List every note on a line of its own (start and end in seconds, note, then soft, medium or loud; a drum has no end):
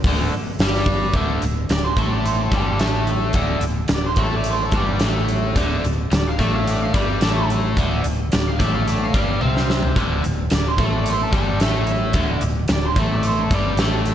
0.04 0.30 D1 medium
0.04 0.33 D2 medium
0.04 0.33 D3 medium
0.04 kick loud
0.04 open hi-hat medium
0.59 1.11 G1 medium
0.59 1.15 G2 medium
0.59 1.15 G3 loud
0.59 snare loud
0.59 open hi-hat medium
0.74 snare soft
0.86 kick medium
1.13 1.40 D1 medium
1.13 1.42 D2 medium
1.13 1.42 D3 loud
1.13 kick medium
1.13 closed hi-hat medium
1.42 1.68 D1 medium
1.42 1.66 D2 medium
1.42 closed hi-hat medium
1.69 1.95 D1 medium
1.69 1.93 D2 medium
1.69 1.84 D5 medium
1.69 snare medium
1.69 closed hi-hat medium
1.84 1.99 C5 medium
1.97 2.49 A1 medium
1.97 2.52 A2 medium
1.97 2.52 A3 medium
1.97 2.11 A4 medium
1.97 kick medium
1.97 closed hi-hat soft
2.12 2.25 D5 medium
2.25 2.39 C5 medium
2.25 closed hi-hat medium
2.42 2.53 A4 medium
2.51 2.78 G1 medium
2.51 2.79 G2 medium
2.51 2.80 G3 loud
2.51 2.80 A4 medium
2.51 kick medium
2.51 closed hi-hat medium
2.79 3.32 A1 medium
2.79 3.34 A2 medium
2.79 3.35 A3 loud
2.79 snare medium
2.79 closed hi-hat medium
3.07 closed hi-hat medium
3.33 3.60 D1 medium
3.33 3.60 D2 medium
3.33 3.62 D3 loud
3.33 kick medium
3.33 closed hi-hat medium
3.61 3.88 D1 medium
3.61 3.84 D2 medium
3.61 closed hi-hat medium
3.88 4.16 D1 medium
3.88 4.12 D2 medium
3.88 snare loud
3.88 closed hi-hat medium
3.94 4.06 D5 medium
4.06 4.22 C5 medium
4.16 4.69 A1 medium
4.16 4.73 A2 medium
4.16 4.73 A3 medium
4.16 kick medium
4.16 closed hi-hat medium
4.22 4.34 A4 medium
4.36 4.50 D5 medium
4.44 closed hi-hat medium
4.50 4.62 C5 medium
4.65 4.76 A4 medium
4.72 4.98 G1 medium
4.72 5.00 G2 medium
4.72 kick medium
4.72 closed hi-hat medium
4.76 5.01 G3 loud
4.76 5.02 D5 medium
4.99 5.52 A1 medium
4.99 5.55 A2 medium
4.99 5.56 A3 loud
4.99 snare loud
4.99 closed hi-hat medium
5.29 closed hi-hat medium
5.56 5.82 D1 medium
5.56 5.83 D2 loud
5.56 5.84 D3 loud
5.56 kick medium
5.56 closed hi-hat medium
5.84 6.10 D1 medium
5.84 6.07 D2 medium
5.84 closed hi-hat medium
6.11 6.37 D1 medium
6.11 6.34 D2 medium
6.11 6.27 D5 medium
6.11 snare loud
6.11 closed hi-hat medium
6.27 6.40 F5 medium
6.38 6.90 A1 medium
6.38 6.93 A2 medium
6.38 6.94 A3 loud
6.38 6.54 D5 medium
6.38 kick medium
6.38 closed hi-hat medium
6.54 6.67 F5 medium
6.67 6.82 D5 medium
6.67 closed hi-hat medium
6.82 6.94 F5 medium
6.94 7.20 G1 medium
6.94 7.21 G2 medium
6.94 7.21 G3 loud
6.94 7.48 D5 medium
6.94 kick medium
6.94 closed hi-hat medium
7.21 7.73 A1 medium
7.21 7.76 A2 medium
7.21 7.76 A3 medium
7.21 snare loud
7.21 closed hi-hat medium
7.50 closed hi-hat medium
7.77 8.02 D1 medium
7.77 8.03 D2 medium
7.77 8.04 D3 loud
7.77 kick medium
7.77 closed hi-hat medium
8.04 8.30 D1 medium
8.04 8.26 D2 medium
8.04 closed hi-hat medium
8.32 8.58 D1 medium
8.32 8.55 D2 medium
8.32 8.47 D5 medium
8.32 snare loud
8.32 closed hi-hat medium
8.47 8.60 F5 medium
8.59 9.10 A1 medium
8.59 9.13 A2 medium
8.59 9.14 A3 medium
8.59 8.73 D5 medium
8.59 kick loud
8.59 closed hi-hat medium
8.73 8.86 F5 medium
8.88 9.03 D5 medium
8.88 closed hi-hat medium
9.03 9.14 F5 medium
9.14 9.39 G1 medium
9.14 9.40 G2 medium
9.14 9.41 G3 loud
9.14 9.67 F5 medium
9.14 kick loud
9.14 closed hi-hat medium
9.41 9.94 C2 medium
9.41 9.95 C3 medium
9.41 9.96 C4 loud
9.41 high tom medium
9.57 snare medium
9.70 snare medium
9.83 floor tom medium
9.96 10.22 D1 medium
9.96 10.23 D2 medium
9.96 10.23 D3 medium
9.96 kick medium
9.96 closed hi-hat medium
10.24 10.50 D1 medium
10.24 10.45 D2 medium
10.24 closed hi-hat medium
10.50 10.77 D1 medium
10.50 10.73 D2 medium
10.50 snare medium
10.50 closed hi-hat medium
10.54 10.68 D5 medium
10.68 10.80 C5 medium
10.78 11.29 A1 medium
10.78 11.31 A2 medium
10.78 11.33 A3 medium
10.78 kick loud
10.78 closed hi-hat medium
10.83 10.94 A4 medium
10.98 11.10 D5 medium
11.06 11.21 C5 medium
11.06 closed hi-hat medium
11.23 11.34 A4 medium
11.32 11.58 G1 medium
11.32 11.59 G2 loud
11.32 11.60 G3 loud
11.32 kick loud
11.32 closed hi-hat soft
11.36 11.61 A4 medium
11.60 12.12 A1 medium
11.60 12.14 A2 medium
11.60 12.15 A3 medium
11.60 snare medium
11.60 closed hi-hat medium
11.87 closed hi-hat medium
12.13 12.40 D1 medium
12.13 12.41 D2 medium
12.13 12.41 D3 loud
12.13 kick medium
12.13 closed hi-hat medium
12.41 12.67 D1 medium
12.41 12.64 D2 medium
12.41 closed hi-hat medium
12.68 12.95 D1 medium
12.68 12.91 D2 medium
12.68 snare loud
12.68 closed hi-hat medium
12.72 12.84 D5 medium
12.86 12.99 C5 medium
12.96 13.47 A1 medium
12.96 13.50 A2 medium
12.96 13.51 A3 medium
12.96 13.11 A4 medium
12.96 kick medium
12.96 closed hi-hat medium
13.13 13.26 D5 medium
13.23 13.38 C5 medium
13.23 closed hi-hat medium
13.42 13.53 A4 medium
13.50 13.76 G1 medium
13.50 13.78 G2 medium
13.50 13.79 G3 loud
13.50 13.79 D5 loud
13.50 kick loud
13.50 closed hi-hat medium
13.77 14.14 A1 loud
13.77 14.14 A2 medium
13.77 14.14 A3 loud
13.77 snare loud
13.77 closed hi-hat medium
14.06 closed hi-hat medium